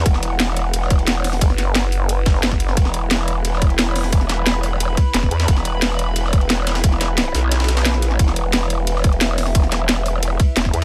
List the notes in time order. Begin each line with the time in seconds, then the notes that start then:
Already playing: E4 B4 F#5
0.06 E1, kick, closed hi-hat, ride
0.14 snare
0.23 closed hi-hat, ride
0.40 snare, closed hi-hat, ride
0.48 snare
0.56 closed hi-hat, ride
0.73 closed hi-hat, ride
0.82 snare
0.90 kick, closed hi-hat, ride
0.99 ride
1.07 snare, closed hi-hat, ride
1.24 snare, closed hi-hat, open hi-hat
1.33 snare, ride
1.41 F#1, kick, closed hi-hat, ride
1.50 snare
1.58 snare, closed hi-hat, ride
1.75 snare, closed hi-hat, ride
1.92 open hi-hat, ride
2.09 closed hi-hat, ride
2.26 kick, snare, closed hi-hat, ride
2.35 snare
2.43 snare, closed hi-hat, ride
2.51 kick, snare
2.60 closed hi-hat, ride
2.68 snare
2.77 E1 B5, kick, closed hi-hat, ride
2.85 snare
2.94 closed hi-hat, ride
3.11 snare, closed hi-hat, ride
3.19 snare
3.28 closed hi-hat, ride
3.45 closed hi-hat, ride
3.53 snare
3.62 kick, closed hi-hat, ride
3.70 ride
3.79 snare, closed hi-hat, ride
3.96 snare, closed hi-hat, open hi-hat
4.04 snare, ride
4.12 E1, kick, closed hi-hat, ride
4.21 snare
4.29 snare, closed hi-hat, ride
4.46 snare, closed hi-hat, ride
4.63 open hi-hat, ride
4.80 closed hi-hat, ride
4.97 kick, closed hi-hat, ride
5.14 E1, snare, closed hi-hat, ride
5.23 kick, snare
5.31 E2, closed hi-hat, ride
5.40 snare, ride
5.48 E1, kick, closed hi-hat, ride
5.57 snare
5.65 closed hi-hat, ride
5.82 snare, closed hi-hat, ride
5.90 snare
5.99 closed hi-hat, ride
6.16 closed hi-hat, ride
6.24 snare
6.33 kick, closed hi-hat, ride
6.41 ride
6.50 snare, closed hi-hat, ride
6.67 snare, closed hi-hat, ride
6.75 snare, ride
6.84 E1, kick, closed hi-hat, ride
6.92 snare
7.01 snare, closed hi-hat, ride
7.18 snare, closed hi-hat, ride
7.35 B1, snare, open hi-hat, ride
7.51 snare, closed hi-hat, ride
7.60 snare, ride
7.64 snare, ride
7.68 snare, closed hi-hat, ride
7.77 snare, ride
7.85 snare, closed hi-hat, ride
7.94 A#1, snare
8.02 snare, closed hi-hat, ride
8.11 snare
8.19 E1 E5, kick, closed hi-hat, ride
8.28 snare
8.36 closed hi-hat, ride
8.53 snare, closed hi-hat, ride
8.62 snare
8.70 closed hi-hat, ride
8.87 closed hi-hat, ride
8.96 snare
9.04 kick, closed hi-hat, ride
9.13 ride
9.21 snare, closed hi-hat, ride
9.38 snare, closed hi-hat, open hi-hat
9.46 snare, ride
9.55 E1, kick, closed hi-hat, ride
9.63 snare
9.72 snare, closed hi-hat, ride
9.89 snare, closed hi-hat, ride
10.06 open hi-hat, ride
10.23 closed hi-hat, ride
10.40 kick, closed hi-hat, ride
10.57 E1, snare, closed hi-hat, ride
10.65 kick, snare
10.74 E2, closed hi-hat, ride